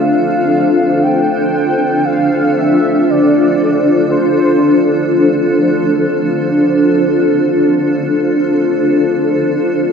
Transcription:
Already playing: ambient pad D4 F4 A4 C5
0.01 soft synth lead F5
1.03 soft synth lead G5
2.05 soft synth lead F5
2.57 soft synth lead E5
3.10 soft synth lead D5
4.10 soft synth lead C5

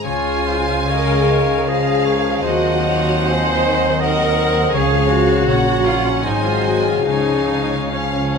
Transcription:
Already playing: harp G#3 G#4, french horn section G#3
0.03 double bass section C#2, harp C#3, cello section C#3, bassoon C#3, french horn section C#4, viola section F4, violin section C#5 G#5, oboe C#5, flute G#5
0.47 harp G#3, oboe C5, violin section F5
0.89 bassoon C#3, harp G#4, viola section A#4, oboe C#5, violin section D#5, flute F5
1.30 bassoon D#3, violin section C#5, harp C#5
1.68 bassoon F3, viola section G#4, harp G#4, violin section C5 F5, oboe D#5
2.06 harp G#3, violin section A#4, oboe C#5
2.43 double bass section D#2, harp D#3, cello section D#3, french horn section F#3 C4, viola section F#4, oboe C5, violin section C5 D#5 F#5, flute D#5
2.86 harp C4, violin section C#5
3.25 bassoon F3, harp F#4, viola section C5, violin section D#5, flute G#5
3.64 bassoon D#3, harp C5
4.00 bassoon D#3, harp F#4, viola section A#4, violin section C5 D#5 F#5, oboe D#5, flute F#5
4.38 harp C4, violin section C5
4.73 double bass section C#2, harp C#3, cello section C#3, bassoon C#3, french horn section F3 C#4, viola section G#4, oboe C#5, violin section C#5 F5, flute F5
5.09 harp F4 C#5, viola section F#4
5.46 double bass section A#1, harp A#2, cello section A#2, bassoon F#3, french horn section C#4, violin section C#5 F#5, oboe C#5, flute F#5
5.50 french horn section F#3
5.84 viola section F4, harp F#4 C#5
6.05 viola section C#4
6.23 double bass section G#1, harp G#2, cello section G#2, bassoon F#3, french horn section F#3, viola section D#4, violin section C5 D#5 G#5, oboe C5, flute G#5
6.27 french horn section C4
6.44 viola section F4
6.63 viola section F#4, harp F#4 G#4
6.84 viola section F4
7.04 double bass section C#2, cello section C#3, harp C#3, bassoon F3, french horn section F3, viola section D#4, violin section C#5 F5 G#5, flute G#5
7.08 french horn section C#4, oboe C#5
7.48 harp C#4
7.88 french horn section F3 C#4, bassoon F3, viola section C#4, harp F4, flute G#5
7.92 oboe C#5, violin section F5
8.33 harp C#5

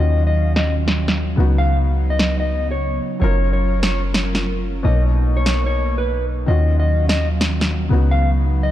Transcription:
Already playing: 808-style bass D#2, felt piano D#3 C#4 F4 F#4, analog synth pad D#3 F#3 C#4 F5, clean electric guitar D#5
0.27 clean electric guitar D#5
0.56 clean electric guitar D#5, snare
0.88 snare
1.08 snare
1.36 808-style bass C#2, felt piano C#3 B3 D#4, analog synth pad C#3 B3 D#4
1.40 felt piano F#4
1.58 clean electric guitar F5
2.10 clean electric guitar D#5
2.19 snare
2.40 clean electric guitar D#5
2.71 clean electric guitar C#5
3.20 808-style bass F#1, felt piano F#3 C#4 F4 A#4, analog synth pad F#3 C#4 F4 A#4, clean electric guitar C#5
3.53 clean electric guitar C#5
3.83 clean electric guitar C#5, snare
4.14 snare
4.35 snare
4.83 808-style bass B1, felt piano B2 A#3 D#4, analog synth pad A#3 D#4, clean electric guitar D#5
4.87 felt piano C#5
5.37 clean electric guitar C#5
5.46 snare
5.66 clean electric guitar C#5
5.98 clean electric guitar B4
6.46 808-style bass D#2, felt piano D#3 C#4 F4 F#4, analog synth pad D#3 F#3 C#4 F5, clean electric guitar D#5
6.80 clean electric guitar D#5
7.09 clean electric guitar D#5, snare
7.41 snare
7.61 snare
7.89 808-style bass C#2, felt piano C#3 B3 D#4 F#4, analog synth pad C#3 B3 D#4
8.11 clean electric guitar F5
8.63 clean electric guitar D#5

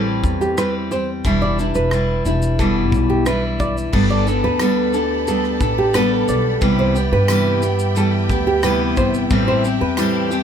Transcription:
Already playing: upright bass A1, steel-string acoustic guitar A2 E3 G3 C4 G4
0.24 upright bass E2, kick, shaker
0.41 nylon-string guitar G4, shaker
0.58 steel-string acoustic guitar E3 G3 C4 G4, nylon-string guitar B4, cross-stick, shaker
0.91 steel-string acoustic guitar G3 C4 G4, nylon-string guitar C5, shaker
1.25 upright bass E1, steel-string acoustic guitar E2 B2 E3 G3 D4 E4, kick, shaker
1.42 nylon-string guitar D5
1.59 steel-string acoustic guitar E3 G3 D4 E4, shaker
1.75 upright bass E1, nylon-string guitar B4, shaker
1.91 steel-string acoustic guitar E3 G3 D4 E4, cross-stick, shaker
2.25 upright bass E1, steel-string acoustic guitar E3 G3 D4 E4, shaker
2.42 shaker
2.59 steel-string acoustic guitar E2 B2 E3 G3 D4 E4, nylon-string guitar A4, kick, shaker
2.92 upright bass B1, kick, shaker
3.10 nylon-string guitar G4
3.25 steel-string acoustic guitar E3 G3 D4 E4, nylon-string guitar B4, cross-stick, shaker
3.60 nylon-string guitar D5, kick, shaker
3.77 shaker
3.93 upright bass G1, steel-string acoustic guitar G3 B3 D4 A4, string section G4 D5 A5 B5, kick, crash
4.10 nylon-string guitar D5
4.26 steel-string acoustic guitar B3 D4 A4, shaker
4.43 upright bass D2, nylon-string guitar B4
4.59 steel-string acoustic guitar G3 B3 D4 A4, cross-stick, tambourine, shaker
4.94 steel-string acoustic guitar B3 D4 A4, shaker
5.27 steel-string acoustic guitar G3 B3 D4 A4, nylon-string guitar A4, shaker
5.44 cross-stick
5.61 upright bass A1, steel-string acoustic guitar B3 D4 A4, kick, shaker
5.78 nylon-string guitar G4
5.94 steel-string acoustic guitar G3 B3 D4 A4, nylon-string guitar B4, cross-stick, tambourine, shaker
6.28 upright bass B1, nylon-string guitar D5, shaker
6.61 upright bass C2, steel-string acoustic guitar C3 E3 G3 B3 G4, string section E5 G5, kick, shaker
6.79 nylon-string guitar C5
6.95 steel-string acoustic guitar G3 B3 G4, shaker
7.12 upright bass G2, nylon-string guitar B4
7.28 steel-string acoustic guitar C3 E3 G3 B3 G4, cross-stick, tambourine, shaker
7.62 steel-string acoustic guitar G3 B3 G4, shaker
7.79 shaker
7.95 steel-string acoustic guitar E3 G3 B3 G4, nylon-string guitar A4, shaker
8.29 upright bass D2, steel-string acoustic guitar G3 B3 G4, kick, shaker
8.47 nylon-string guitar G4
8.63 steel-string acoustic guitar C3 E3 G3 B3 G4, nylon-string guitar B4, cross-stick, tambourine, shaker
8.97 upright bass G1, nylon-string guitar C5, kick, shaker
9.14 shaker
9.30 upright bass A1, steel-string acoustic guitar A2 E3 G3 C4 G4, string section G5 A5, kick, shaker
9.48 nylon-string guitar C5
9.64 steel-string acoustic guitar G3 C4 G4, shaker
9.81 upright bass E2, nylon-string guitar B4
9.97 steel-string acoustic guitar A2 E3 G3 C4 G4, cross-stick, tambourine, shaker
10.31 steel-string acoustic guitar G3 C4 G4, shaker

